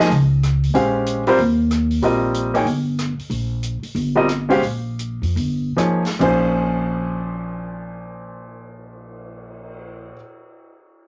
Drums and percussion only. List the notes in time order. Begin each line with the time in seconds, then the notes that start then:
0.11 open hi-hat
0.43 cross-stick, closed hi-hat
0.64 open hi-hat
0.75 open hi-hat
1.06 closed hi-hat
1.27 open hi-hat
1.38 open hi-hat
1.71 cross-stick, closed hi-hat
1.91 open hi-hat
2.02 open hi-hat
2.34 closed hi-hat
2.55 open hi-hat
2.66 open hi-hat
2.99 cross-stick, closed hi-hat
3.19 open hi-hat
3.31 open hi-hat
3.63 closed hi-hat
3.83 open hi-hat
3.96 open hi-hat
4.29 cross-stick, closed hi-hat
4.50 open hi-hat
4.63 open hi-hat
4.99 closed hi-hat
5.23 open hi-hat
5.37 open hi-hat
5.78 cross-stick, closed hi-hat
6.05 snare, open hi-hat
6.21 kick, crash
6.50 cymbal swell